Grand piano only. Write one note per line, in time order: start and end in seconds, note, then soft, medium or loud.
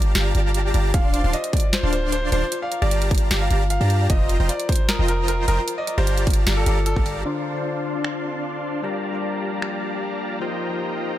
0.94 1.27 F5 loud
1.33 1.50 D#5 medium
1.53 1.70 D5 medium
1.73 1.89 C5 medium
1.93 2.09 C5 medium
2.12 2.29 C5 medium
2.32 2.57 C5 loud
2.62 2.78 F5 medium
2.82 3.06 D5 medium
3.41 3.65 F5 medium
3.70 4.03 F5 loud
4.10 4.43 D#5 loud
4.49 4.66 D5 medium
4.69 4.85 C5 medium
4.88 5.05 A#4 medium
5.08 5.25 A#4 medium
5.28 5.45 A#4 medium
5.48 5.72 A#4 medium
5.78 5.94 D#5 medium
5.98 6.22 C5 loud
6.57 6.81 A4 medium
6.86 7.19 A4 medium